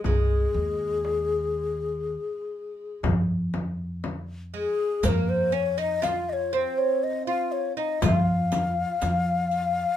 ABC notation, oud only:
X:1
M:10/8
L:1/16
Q:1/4=60
K:none
V:1 name="Oud"
_A,12 z6 A,2 | _B,2 _D _E F2 C3 F2 E F8 |]